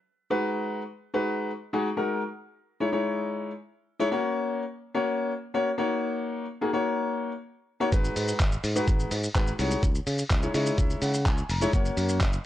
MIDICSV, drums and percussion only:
0, 0, Header, 1, 2, 480
1, 0, Start_track
1, 0, Key_signature, 5, "minor"
1, 0, Tempo, 476190
1, 307, Time_signature, 4, 2, 24, 8
1, 12555, End_track
2, 0, Start_track
2, 0, Title_t, "Drums"
2, 7987, Note_on_c, 9, 36, 119
2, 7987, Note_on_c, 9, 42, 70
2, 7987, Note_on_c, 9, 82, 70
2, 8088, Note_off_c, 9, 36, 0
2, 8088, Note_off_c, 9, 42, 0
2, 8088, Note_off_c, 9, 82, 0
2, 8108, Note_on_c, 9, 82, 58
2, 8208, Note_off_c, 9, 82, 0
2, 8227, Note_on_c, 9, 46, 81
2, 8227, Note_on_c, 9, 82, 56
2, 8328, Note_off_c, 9, 46, 0
2, 8328, Note_off_c, 9, 82, 0
2, 8345, Note_on_c, 9, 82, 82
2, 8446, Note_off_c, 9, 82, 0
2, 8464, Note_on_c, 9, 39, 111
2, 8467, Note_on_c, 9, 36, 125
2, 8467, Note_on_c, 9, 42, 90
2, 8467, Note_on_c, 9, 82, 91
2, 8565, Note_off_c, 9, 39, 0
2, 8568, Note_off_c, 9, 36, 0
2, 8568, Note_off_c, 9, 42, 0
2, 8568, Note_off_c, 9, 82, 0
2, 8586, Note_on_c, 9, 82, 54
2, 8687, Note_off_c, 9, 82, 0
2, 8707, Note_on_c, 9, 46, 70
2, 8707, Note_on_c, 9, 82, 50
2, 8807, Note_off_c, 9, 46, 0
2, 8807, Note_off_c, 9, 82, 0
2, 8827, Note_on_c, 9, 82, 78
2, 8928, Note_off_c, 9, 82, 0
2, 8947, Note_on_c, 9, 42, 65
2, 8947, Note_on_c, 9, 82, 68
2, 8948, Note_on_c, 9, 36, 112
2, 9048, Note_off_c, 9, 42, 0
2, 9048, Note_off_c, 9, 82, 0
2, 9049, Note_off_c, 9, 36, 0
2, 9068, Note_on_c, 9, 82, 51
2, 9168, Note_off_c, 9, 82, 0
2, 9186, Note_on_c, 9, 46, 86
2, 9186, Note_on_c, 9, 82, 61
2, 9287, Note_off_c, 9, 46, 0
2, 9287, Note_off_c, 9, 82, 0
2, 9308, Note_on_c, 9, 82, 71
2, 9409, Note_off_c, 9, 82, 0
2, 9427, Note_on_c, 9, 42, 63
2, 9427, Note_on_c, 9, 82, 66
2, 9428, Note_on_c, 9, 36, 117
2, 9428, Note_on_c, 9, 39, 117
2, 9528, Note_off_c, 9, 42, 0
2, 9528, Note_off_c, 9, 82, 0
2, 9529, Note_off_c, 9, 36, 0
2, 9529, Note_off_c, 9, 39, 0
2, 9546, Note_on_c, 9, 82, 51
2, 9647, Note_off_c, 9, 82, 0
2, 9666, Note_on_c, 9, 46, 69
2, 9666, Note_on_c, 9, 82, 48
2, 9767, Note_off_c, 9, 46, 0
2, 9767, Note_off_c, 9, 82, 0
2, 9787, Note_on_c, 9, 82, 81
2, 9888, Note_off_c, 9, 82, 0
2, 9907, Note_on_c, 9, 42, 75
2, 9907, Note_on_c, 9, 82, 75
2, 9908, Note_on_c, 9, 36, 121
2, 10008, Note_off_c, 9, 36, 0
2, 10008, Note_off_c, 9, 42, 0
2, 10008, Note_off_c, 9, 82, 0
2, 10029, Note_on_c, 9, 82, 60
2, 10129, Note_off_c, 9, 82, 0
2, 10149, Note_on_c, 9, 46, 82
2, 10149, Note_on_c, 9, 82, 59
2, 10249, Note_off_c, 9, 46, 0
2, 10249, Note_off_c, 9, 82, 0
2, 10266, Note_on_c, 9, 82, 79
2, 10366, Note_off_c, 9, 82, 0
2, 10386, Note_on_c, 9, 39, 109
2, 10388, Note_on_c, 9, 36, 126
2, 10388, Note_on_c, 9, 42, 91
2, 10388, Note_on_c, 9, 82, 90
2, 10486, Note_off_c, 9, 39, 0
2, 10489, Note_off_c, 9, 36, 0
2, 10489, Note_off_c, 9, 42, 0
2, 10489, Note_off_c, 9, 82, 0
2, 10507, Note_on_c, 9, 82, 56
2, 10608, Note_off_c, 9, 82, 0
2, 10628, Note_on_c, 9, 46, 67
2, 10628, Note_on_c, 9, 82, 49
2, 10729, Note_off_c, 9, 46, 0
2, 10729, Note_off_c, 9, 82, 0
2, 10748, Note_on_c, 9, 82, 82
2, 10849, Note_off_c, 9, 82, 0
2, 10866, Note_on_c, 9, 42, 68
2, 10866, Note_on_c, 9, 82, 68
2, 10868, Note_on_c, 9, 36, 109
2, 10967, Note_off_c, 9, 42, 0
2, 10967, Note_off_c, 9, 82, 0
2, 10969, Note_off_c, 9, 36, 0
2, 10987, Note_on_c, 9, 82, 51
2, 11088, Note_off_c, 9, 82, 0
2, 11105, Note_on_c, 9, 46, 83
2, 11105, Note_on_c, 9, 82, 59
2, 11206, Note_off_c, 9, 46, 0
2, 11206, Note_off_c, 9, 82, 0
2, 11228, Note_on_c, 9, 82, 79
2, 11329, Note_off_c, 9, 82, 0
2, 11348, Note_on_c, 9, 36, 122
2, 11348, Note_on_c, 9, 42, 63
2, 11348, Note_on_c, 9, 82, 67
2, 11349, Note_on_c, 9, 39, 118
2, 11449, Note_off_c, 9, 36, 0
2, 11449, Note_off_c, 9, 42, 0
2, 11449, Note_off_c, 9, 82, 0
2, 11450, Note_off_c, 9, 39, 0
2, 11466, Note_on_c, 9, 82, 48
2, 11567, Note_off_c, 9, 82, 0
2, 11587, Note_on_c, 9, 46, 70
2, 11587, Note_on_c, 9, 82, 50
2, 11688, Note_off_c, 9, 46, 0
2, 11688, Note_off_c, 9, 82, 0
2, 11707, Note_on_c, 9, 82, 78
2, 11808, Note_off_c, 9, 82, 0
2, 11827, Note_on_c, 9, 36, 123
2, 11827, Note_on_c, 9, 42, 71
2, 11827, Note_on_c, 9, 82, 71
2, 11928, Note_off_c, 9, 36, 0
2, 11928, Note_off_c, 9, 42, 0
2, 11928, Note_off_c, 9, 82, 0
2, 11947, Note_on_c, 9, 82, 58
2, 12048, Note_off_c, 9, 82, 0
2, 12068, Note_on_c, 9, 46, 79
2, 12068, Note_on_c, 9, 82, 58
2, 12168, Note_off_c, 9, 46, 0
2, 12168, Note_off_c, 9, 82, 0
2, 12185, Note_on_c, 9, 82, 85
2, 12286, Note_off_c, 9, 82, 0
2, 12303, Note_on_c, 9, 39, 114
2, 12306, Note_on_c, 9, 42, 90
2, 12306, Note_on_c, 9, 82, 89
2, 12307, Note_on_c, 9, 36, 119
2, 12404, Note_off_c, 9, 39, 0
2, 12407, Note_off_c, 9, 42, 0
2, 12407, Note_off_c, 9, 82, 0
2, 12408, Note_off_c, 9, 36, 0
2, 12426, Note_on_c, 9, 82, 54
2, 12526, Note_off_c, 9, 82, 0
2, 12555, End_track
0, 0, End_of_file